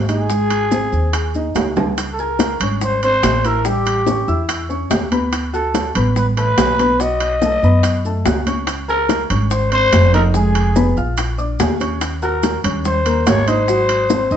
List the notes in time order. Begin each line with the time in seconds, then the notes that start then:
Already playing: G#1
0.09 D#4 G#4 D#5, high timbale, maracas
0.30 G#3 G#4, high bongo, high conga, maracas
0.50 high bongo, high conga, high timbale, maracas
0.71 C4 C5, high bongo, high conga, low timbale, maracas
0.92 D#2, high bongo, high conga, maracas
1.13 G#4 G#5, high bongo, high conga, high timbale, maracas
1.34 D#4 D#5, high conga, maracas
1.55 C#2, high bongo, high timbale, low timbale, maracas
1.76 G#4 G#5, low bongo, low conga, high timbale, maracas
1.98 high bongo, high conga, high timbale, maracas
2.13 A4
2.19 G#4 A#4 G#5 G#6, high conga, maracas
2.39 high bongo, high conga, high timbale, low timbale, maracas
2.60 G#1 C#4 C#5 C#6, high conga, low conga, high timbale, maracas
2.81 C5, high bongo, high conga, low conga, maracas
3.03 C4 C5 C6, high conga, high timbale, maracas
3.23 A1, high bongo, low bongo, high conga, high timbale, low timbale, maracas
3.45 E4 A#4 E5 E6, high timbale, maracas
3.65 G3 G4 G5, high bongo, high conga, maracas
3.86 high bongo, high conga, high timbale, maracas
4.07 C#4 C#5 C#6, high bongo, high conga, low timbale, maracas
4.28 E2 E4 E5 E6, high bongo, high conga, maracas
4.49 high bongo, high conga, high timbale, maracas
4.69 C#4 C#5 C#6, high conga, maracas
4.90 D2 G4 G5 G6, high bongo, low bongo, high conga, high timbale, low timbale, maracas
5.11 B3 B4 B5, high bongo, high conga, high timbale, maracas
5.33 high bongo, high conga, high timbale, maracas
5.53 F#4 A4 F#5 F#6, high conga, maracas
5.74 high bongo, high conga, high timbale, low timbale, maracas
5.95 A1 B3 B4 B5, high conga, low conga, high timbale, maracas
6.16 B4, high bongo, high conga, low conga, maracas
6.37 A3 A4 B4 A5, high conga, high timbale, maracas
6.58 B1, high bongo, low bongo, high conga, high timbale, low timbale, maracas
6.79 B3 B4 B5, high timbale, maracas
7.00 F#3 F#4 D#5 F#5, high bongo, high conga, maracas
7.20 high bongo, high conga, high timbale, maracas
7.42 A3 A4 A5, high bongo, high conga, low timbale, maracas
7.63 F#2 B3 B4 B5, high bongo, high conga, maracas
7.83 high bongo, high conga, high timbale, maracas
8.05 A3 A4 A5, high conga, maracas
8.25 C#2 F#4 F#5 F#6, high bongo, low bongo, high conga, high timbale, low timbale, maracas
8.46 C#4 C#5 C#6, high bongo, high conga, high timbale, maracas
8.67 high bongo, high conga, high timbale, maracas
8.89 G#4 A#4 G#5 G#6, high conga, maracas
9.09 high bongo, high conga, high timbale, low timbale, maracas
9.30 G#1 C#4 C#5 C#6, high conga, low conga, high timbale, maracas
9.51 C5, high bongo, high conga, maracas
9.72 C4 C5 C6, high conga, high timbale, maracas
9.92 F1, high bongo, low bongo, high conga, high timbale, low timbale, maracas
10.13 D#4 A#4 D#5 D#6, high conga, high timbale, maracas
10.34 G#3 G#4 G#5, high bongo, high conga, maracas
10.55 high bongo, high conga, high timbale, maracas
10.76 B3 B4 B5, high bongo, high conga, low timbale, maracas
10.97 A#1 F4 F5 F6, high bongo, high conga, maracas
11.17 high bongo, high conga, high timbale, maracas
11.38 D4 D5 D6, high conga, maracas
11.59 D#2 G#4 G#5 G#6, high bongo, low bongo, high conga, high timbale, low timbale, maracas
11.80 C#4 C#5 C#6, high bongo, high timbale, maracas
12.01 high bongo, high conga, high timbale, maracas
12.22 F#4 A#4 F#5 F#6, high conga, maracas
12.43 high bongo, high conga, high timbale, low timbale, maracas
12.64 D#2 C#4 C#5 C#6, high conga, low conga, high timbale, maracas
12.85 C5, high bongo, high conga, low conga, maracas
13.05 A#3 A#4 A#5, high conga, high timbale, maracas
13.27 G#1 C#5, high bongo, low bongo, high conga, high timbale, low timbale, maracas
13.48 D#4 C5 D#5 D#6, high timbale, maracas
13.68 F#3 F#4 F#5, high bongo, high conga, maracas
13.89 high bongo, high conga, high timbale, maracas
14.10 C4 C5 C6, high bongo, high conga, low timbale, maracas
14.31 D#2 D#4 D#5 D#6, high bongo, high conga, maracas